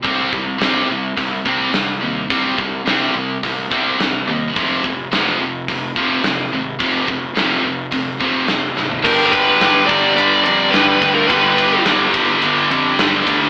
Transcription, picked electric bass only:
X:1
M:4/4
L:1/8
Q:1/4=107
K:Fdor
V:1 name="Picked electric bass" clef=bass
C,, C,, C,, C,, C,, C,, C,, E,, | C,, C,, C,, C,, C,, C,, C,, E,, | F,,, F,,, F,,, F,,, F,,, F,,, F,,, A,,, | F,,, F,,, F,,, F,,, F,,, F,,, F,,, A,,, |
[K:Gphr] G,,,2 G,,, G,,, G,,, F,, G,, D,, | G,,,2 G,,, G,,, G,,, F,, G,, D,, |]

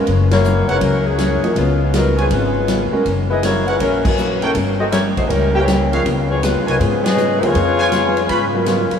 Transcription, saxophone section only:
X:1
M:4/4
L:1/8
Q:"Swing" 1/4=160
K:Dbmix
V:1 name="Saxophone section"
z [B,_FGd]2 [A,DFc] [G,DFB] [G,DFA]3 | [A,CDF]2 [G,CEB] [F,CDA] [A,DFc]3 z | z [C_FAe] [B,FGd] [A,DFc] [G,DFB] [_F,B,DG]2 z | z [=CG=Ae] [B,=E=Gd] [=A,_E_G=c] [=G,D=EB] [=E,B,D=G]2 z |
z [CFAd] [A,DFc] [G,CEB] [F,CDA] [DAce]2 [CFAd]- | [CFAd]6 z2 |]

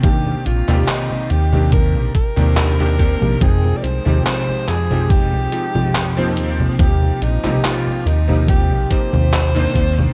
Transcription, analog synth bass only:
X:1
M:4/4
L:1/16
Q:"Swing 16ths" 1/4=71
K:Eb
V:1 name="Analog synth bass" clef=bass
E,, z B,,, E,, z2 E,,3 B,,, z E,,3 E,, B,,, | F,, z C,, E,, z2 F,,3 C,, z F,,3 E,, z | E,, z B,,, C,, z2 E,,3 B,,, z E,,3 E,, z |]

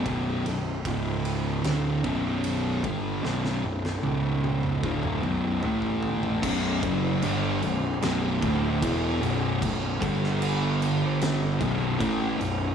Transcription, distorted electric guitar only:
X:1
M:4/4
L:1/8
Q:1/4=75
K:Bm
V:1 name="Distorted electric guitar" clef=bass
[B,,,F,,B,,] [B,,,F,,] [C,,^G,,C,]2 [D,,A,,D,] [B,,,F,,B,,]2 [=G,,D,G,] | [B,,,F,,B,,] [B,,,F,,] [C,,^G,,C,]2 [D,,A,,D,] [B,,,F,,B,,] [A,,E,A,]2 | [B,,,F,,B,,] [F,,C,F,] [G,,D,G,] [B,,,F,,] [B,,,F,,B,,] [D,,A,,D,] [E,,B,,E,] [B,,,F,,B,,] | [B,,,F,,] [G,,D,G,]4 [B,,,F,,B,,] [A,,E,A,] [B,,,F,,] |]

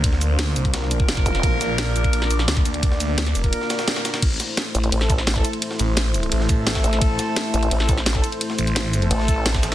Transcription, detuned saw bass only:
X:1
M:4/4
L:1/8
Q:1/4=172
K:Aphr
V:1 name="Detuned saw bass" clef=bass
D,,3 C,,3 F,,, z | B,,,3 B,,,3 D,,2- | D,,3 F,,, z4 | A,,, z6 z |
z A,,,3 A,,,3 z | A,,, z6 z | z A,,,3 z3 A,,, |]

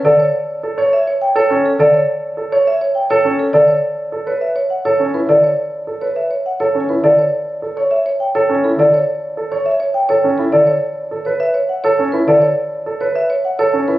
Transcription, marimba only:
X:1
M:3/4
L:1/16
Q:1/4=103
K:D
V:1 name="Marimba"
d c z3 c e c g c z A | d c z3 c e c g c z A | d c z3 c e c f c z B | d c z3 c e c f c z B |
d c z3 c e c g c z A | d c z3 c e c g c z A | d c z3 c e c f c z B | d c z3 c e c f c z B |]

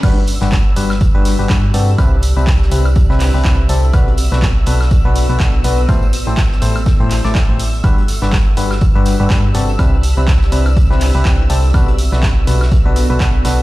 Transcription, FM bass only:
X:1
M:4/4
L:1/16
Q:"Swing 16ths" 1/4=123
K:G
V:1 name="FM bass" clef=bass
G,,,3 G,,,3 G,,,3 G,,,2 G,,, G,,2 G,,2 | C,,3 C,,3 C,,3 C,,2 C,, C,,2 C,,2 | B,,,3 B,,,3 B,,,3 B,,,2 B,,, B,,,2 B,,,2 | A,,,3 A,,,3 A,,,3 A,,,2 A,,,2 A,,,3 |
G,,,3 G,,,3 G,,,3 G,,,2 G,,, G,,2 G,,,2 | C,,3 C,,3 C,,3 C,,2 C,, C,,2 C,,2 | B,,,3 B,,,3 B,,,3 B,,,2 B,,, B,,,2 B,,,2 |]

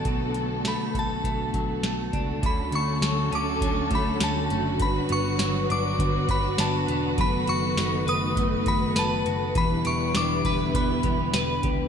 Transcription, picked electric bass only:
X:1
M:4/4
L:1/16
Q:1/4=101
K:D
V:1 name="Picked electric bass" clef=bass
B,,,4- B,,, z B,,,2 B,,,2 B,,,2 B,,,2 C,,2 | D,,2 D,,2 D,,2 D,,2 D,,2 D,,2 D,,2 F,,,2 | G,,,2 G,,,2 G,,,2 G,,,2 G,,,2 G,,,2 G,,,2 E,,,2 | F,,,2 F,,,2 F,,,2 F,,,2 F,,,2 F,,,2 F,,,2 F,,,2 |
E,,,2 E,,,2 E,,,2 E,,,2 E,,,2 E,,,2 E,,,2 C,,2 |]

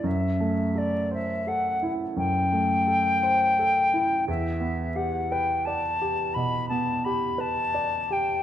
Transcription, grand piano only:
X:1
M:12/8
L:1/8
Q:3/8=57
K:Ador
V:1 name="Grand piano"
F,, A, A c A E F,, A, A c A E | E,, B, G B d G B,, B, G B d G |]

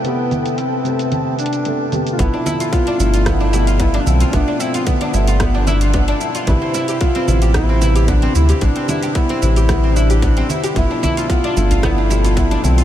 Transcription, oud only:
X:1
M:4/4
L:1/16
Q:"Swing 16ths" 1/4=112
K:Gmix
V:1 name="Oud"
z16 | B, D E F B, D E F B, D E F B, D E F | B, D E F B, D E F B, D E F B, D E F | B, C E G B, C E G B, C E G B, C E G |
B, C E G B, C E G B, C E G B, C E G | B, D E F B, D E F B, D E F B, D E F |]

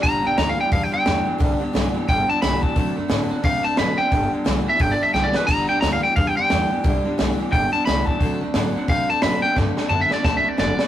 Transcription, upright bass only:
X:1
M:4/4
L:1/8
Q:"Swing" 1/4=176
K:G
V:1 name="Upright bass" clef=bass
G,,, B,,, D,, z E,, z E,, z | C,, z B,,, z G,,, z B,,, z | D,, F,, A,, z C, z B,, z | G,,, z B,,, z G,,, z B,,, z |
G,,, B,,, D,, z E,, z E,, z | C,, z B,,, z G,,, z C,, z | D,, F,, A,, z C, z B,, z | G,, z F,, z D,, z F,,, z |]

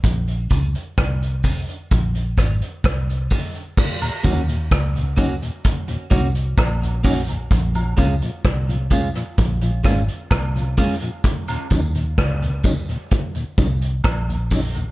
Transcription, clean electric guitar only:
X:1
M:4/4
L:1/8
Q:1/4=64
K:Ebdor
V:1 name="Clean electric guitar"
z [A,DF] z [A,DF] z [A,DF] z [A,DF] | z [B,DG] z [B,DG] z [B,DG] z [B,DG] | z [A,DF] z [A,DF] z [A,DF] z [A,DF] | z8 |]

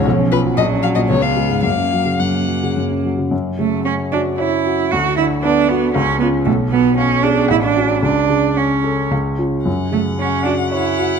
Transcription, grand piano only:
X:1
M:3/4
L:1/16
Q:1/4=114
K:F#
V:1 name="Grand piano" clef=bass
B,,, C E, B,, A,,, C F, A,, C,, C G, G,, | F,, C F, C, F,, C F, C, F,, C F, C, | [K:F#m] F,,2 C,2 C2 F2 c2 F2 | D,,2 D,2 B,2 F2 C,,2 [C^E]2 |
B,,,2 B,,2 C2 G2 A,,,2 [CF]2 | C,,2 C,2 C2 A2 C,,2 [C^E]2 | F,,2 C,2 C2 F2 c2 F2 |]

